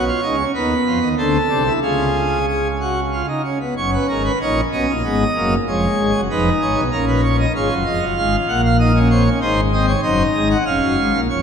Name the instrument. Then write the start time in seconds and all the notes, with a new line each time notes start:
pipe organ
Already playing: B1 B2 C#5
0.08 F4
0.23 C#2 C#3 D#4
0.39 C#4
0.55 D#2 D#3 B3 B4
0.86 F2 F3
1.02 D#2 D#3
1.18 D2 D3 C4 A4
1.50 C2 C3 D4
1.66 E4
1.82 C#2 C#3 F4 G#4
2.48 G#4
2.81 F#4
3.12 F4
3.28 D#4
3.44 C#4
3.61 B3
3.77 F#1 F#2 C#4 C#5
3.93 B4
4.09 G#1 G#2 A#4
4.25 B4
4.41 A#1 A#2 D#4 C#5
4.72 B1 B2 C#4 D#5
4.89 A#1 A#2
5.05 G#1 G#2 B3
5.36 F#1 F#2 A#3
5.67 F1 F2 G#3 C#5
5.99 G#1 G#2
6.15 F#1 F#2
6.30 F1 F2 D#4 B4
6.61 G#1 G#2 C#5
6.76 B1 B2
6.92 A#1 A#2 C#4 A#4
7.08 B4
7.23 C#5
7.40 D#5
7.55 G#1 G#2 F4 C#5
7.70 F#1 F#2
7.85 F1 F2 D#5
8.01 F#1 F#2
8.17 G#1 G#2 F5
8.48 A#1 A#2 F#5
8.64 F5
8.79 D#4 D#5
8.96 C#4
9.10 C4 C#5
9.26 C#4
9.41 G#1 G#2 D#4 C5
9.73 C4 D#5
9.87 C#5
10.03 F#1 F#2 D#4 C5
10.34 G#1 G#2 D#5
10.50 F#5
10.66 F1 F2 C#4 F5
10.82 F#1 F#2
10.98 G#1 G#2
11.14 A#1 A#2
11.30 F1 F2 C#5